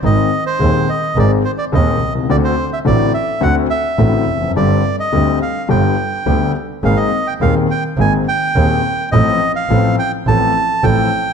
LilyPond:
<<
  \new Staff \with { instrumentName = "Bandoneon" } { \time 4/4 \key aes \lydian \tempo 4 = 106 ees''8. c''8. ees''8 d''8 c''16 d''16 ees''8. r16 | d''16 c''8 e''16 d''8 e''8 fis''8 e''4. | d''8. ees''8. f''8 g''4. r8 | f''16 ees''8 g''16 f''8 g''8 aes''8 g''4. |
ees''8. f''8. g''8 a''4 g''4 | }
  \new Staff \with { instrumentName = "Grand piano" } { \clef bass \time 4/4 \key aes \lydian <aes,, aes, ees aes c' aes'>8 r8 <ees,, ees, ees aes c' aes'>8 r8 <aes,, aes, ees aes c' aes'>8 r8 <ees,, ees, ees aes c' aes'>8 r32 b,,32 c,32 des,32 | <d, d a c' fis'>8 r8 <a,, a, d a c' fis'>8 r8 <d, d a c' fis'>8 r8 <a,, a, d a c' fis'>8 r32 e,32 f,32 fis,32 | <g,, g, d g c' g'>8 r8 <d, d g c' g'>8 r8 <g,, g, d g b g'>8 r8 <d, d g b g'>8 r8 | <aes,, aes, ees bes c' aes'>8 r8 <ees,, ees, ees bes c' aes'>8 r8 <aes,, aes, ees bes c' aes'>8 r8 <ees,, ees, ees bes c' aes'>8 r8 |
<a,, a, f a c' a'>8 r8 <a,, a, f a c' a'>8 r8 <a,, a, f a c' a'>8 r8 <a,, a, f a c' a'>8 r8 | }
  \new Staff \with { instrumentName = "Double bass" } { \clef bass \time 4/4 \key aes \lydian aes,,8 r8 ees,8 r8 aes,,8 r8 ees,8 c,8 | d,8 r8 a,,8 r8 d,8 r8 a,,8 f,,8 | g,,8 r8 d,8 r8 g,,8 r8 d,8 r8 | aes,,8 r8 ees,8 r8 aes,,8 r8 ees,8 r8 |
a,,8 r8 a,,8 r8 a,,8 r8 a,,8 r8 | }
>>